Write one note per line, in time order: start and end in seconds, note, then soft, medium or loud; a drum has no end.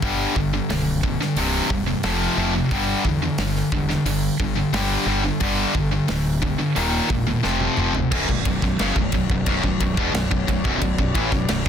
0.02 0.25 G1 medium
0.02 0.34 G2 medium
0.02 0.35 D3 loud
0.02 0.35 G3 loud
0.02 kick loud
0.02 open hi-hat medium
0.36 0.59 G1 medium
0.36 0.53 G2 medium
0.36 0.52 D3 medium
0.36 kick medium
0.54 0.68 G2 medium
0.54 0.69 D3 medium
0.69 1.15 B0 medium
0.69 1.00 G2 medium
0.69 1.00 D3 medium
0.69 snare loud
0.69 open hi-hat medium
1.03 1.20 G2 medium
1.03 1.19 D3 medium
1.03 kick medium
1.20 1.36 G2 medium
1.20 1.37 D3 medium
1.20 snare soft
1.36 1.59 C1 medium
1.36 1.68 C2 medium
1.36 1.69 G2 loud
1.36 1.69 C3 loud
1.36 open hi-hat medium
1.70 1.93 E1 medium
1.70 1.86 C2 medium
1.70 1.85 G2 medium
1.70 kick medium
1.86 2.03 C2 medium
1.86 2.04 G2 medium
2.03 2.27 F1 medium
2.03 2.35 F2 medium
2.03 2.36 C3 loud
2.03 2.36 F3 loud
2.03 snare loud
2.03 open hi-hat medium
2.37 2.60 F1 medium
2.37 2.52 F2 medium
2.37 2.52 C3 medium
2.37 2.53 F3 medium
2.55 2.71 F2 medium
2.55 2.72 C3 medium
2.71 2.94 G1 loud
2.71 3.03 G2 medium
2.71 3.03 D3 loud
2.71 3.04 G3 medium
2.71 kick loud
2.71 open hi-hat medium
3.05 3.28 E2 medium
3.05 3.21 G2 medium
3.05 3.21 D3 medium
3.05 kick medium
3.22 3.38 G2 medium
3.22 3.39 D3 medium
3.38 3.61 G1 medium
3.38 3.69 G2 medium
3.38 3.70 D3 medium
3.38 snare loud
3.38 open hi-hat medium
3.56 snare soft
3.72 3.95 E1 medium
3.72 3.89 G2 medium
3.72 3.88 D3 medium
3.72 kick medium
3.90 4.05 G2 medium
3.90 4.05 D3 medium
3.90 snare soft
4.05 4.28 G1 loud
4.05 4.37 G2 medium
4.05 4.37 D3 medium
4.05 open hi-hat medium
4.40 4.62 G1 medium
4.40 4.56 G2 medium
4.40 4.56 D3 medium
4.40 kick medium
4.57 4.73 G2 medium
4.57 4.73 D3 medium
4.73 4.96 G1 medium
4.73 5.05 G2 medium
4.73 5.06 D3 loud
4.73 5.06 G3 loud
4.73 snare loud
4.73 open hi-hat medium
5.06 5.29 G1 medium
5.06 5.22 G2 medium
5.06 5.22 D3 medium
5.06 5.23 G3 medium
5.24 5.40 G2 medium
5.24 5.40 D3 medium
5.40 5.64 G1 medium
5.40 5.73 G2 medium
5.40 5.73 D3 loud
5.40 5.73 G3 loud
5.40 kick loud
5.40 open hi-hat medium
5.75 5.98 G1 medium
5.75 5.91 G2 medium
5.75 5.90 D3 medium
5.75 kick medium
5.92 6.08 G2 medium
5.92 6.07 D3 medium
6.08 6.54 D1 medium
6.08 6.39 G2 medium
6.08 6.39 D3 medium
6.08 snare loud
6.08 open hi-hat medium
6.42 6.58 G2 medium
6.42 6.57 D3 medium
6.42 kick medium
6.58 6.75 G2 medium
6.58 6.75 D3 medium
6.75 6.99 D#1 loud
6.75 7.07 D#2 medium
6.75 7.07 A#2 medium
6.75 7.08 D#3 medium
6.75 open hi-hat medium
7.09 7.33 E1 medium
7.09 7.26 D#2 medium
7.09 7.26 A#2 medium
7.09 kick medium
7.27 7.43 D#2 medium
7.27 7.43 A#2 medium
7.43 7.67 F1 medium
7.43 7.75 F2 medium
7.43 7.75 C3 loud
7.43 7.76 F3 medium
7.43 snare medium
7.60 high tom medium
7.77 8.01 F1 medium
7.77 7.92 F2 medium
7.77 7.92 C3 medium
7.77 7.93 F3 medium
7.77 mid tom medium
7.95 8.11 F2 medium
7.95 8.11 C3 medium
7.95 floor tom medium
8.11 8.27 B0 medium
8.11 8.27 B1 loud
8.11 8.27 F#2 loud
8.11 11.69 B3 medium
8.11 11.69 F#4 medium
8.11 11.69 C#5 medium
8.11 11.69 D5 medium
8.11 kick loud
8.11 crash loud
8.29 8.44 B0 medium
8.29 8.46 B1 medium
8.29 8.45 F#2 medium
8.29 kick medium
8.45 8.61 B0 medium
8.45 8.62 B1 medium
8.45 8.62 F#2 medium
8.45 kick medium
8.45 ride medium
8.62 8.78 B0 medium
8.62 8.79 B1 medium
8.62 8.79 F#2 medium
8.62 kick medium
8.62 snare soft
8.79 8.95 F#1 medium
8.79 8.95 F#2 medium
8.79 8.96 C#3 loud
8.79 snare loud
8.79 ride loud
8.96 9.12 B0 medium
8.96 9.12 B1 medium
8.96 9.13 F#2 medium
8.96 kick loud
9.12 9.29 B0 medium
9.12 9.30 B1 medium
9.12 9.30 F#2 medium
9.12 kick medium
9.12 ride medium
9.29 9.45 B0 medium
9.29 9.47 B1 medium
9.29 9.47 F#2 medium
9.29 kick medium
9.46 9.62 B0 loud
9.46 9.63 B1 medium
9.46 9.64 F#2 medium
9.46 kick loud
9.46 ride loud
9.64 9.79 B0 medium
9.64 9.81 B1 medium
9.64 9.81 F#2 medium
9.64 kick medium
9.80 9.96 B0 medium
9.80 9.98 B1 medium
9.80 9.98 F#2 medium
9.80 kick medium
9.80 ride medium
9.97 10.13 E1 loud
9.97 10.14 E2 medium
9.97 10.14 B2 loud
9.97 kick loud
10.13 10.29 B0 medium
10.13 10.30 B1 medium
10.13 10.30 F#2 medium
10.13 snare loud
10.13 ride loud
10.31 10.47 B0 medium
10.31 10.48 B1 medium
10.31 10.48 F#2 medium
10.31 kick medium
10.48 10.64 B0 medium
10.48 10.64 B1 medium
10.48 10.64 F#2 medium
10.48 kick medium
10.48 ride medium
10.65 10.80 B0 loud
10.65 10.81 B1 medium
10.65 10.81 F#2 medium
10.65 kick loud
10.82 10.98 B0 medium
10.82 10.97 B1 medium
10.82 10.98 F#2 medium
10.82 kick medium
10.82 ride loud
10.98 11.14 B0 medium
10.98 11.15 B1 medium
10.98 11.16 F#2 medium
10.98 kick loud
11.15 11.31 A1 loud
11.15 11.31 A2 medium
11.15 11.32 E3 medium
11.15 kick loud
11.15 ride medium
11.32 11.48 B0 medium
11.32 11.47 B1 medium
11.32 11.48 F#2 medium
11.32 kick medium
11.32 snare soft
11.49 11.65 B0 medium
11.49 11.64 B1 medium
11.49 11.65 F#2 medium
11.49 snare loud
11.49 ride loud
11.66 11.69 B1 medium